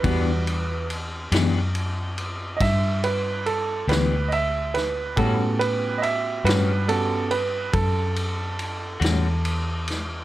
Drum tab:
RD |xxxxxxxxxxxx|xxxxxxxxxxxx|
SD |---o--o--o-o|---o-----o-o|
BD |o-----o-----|o-----o-----|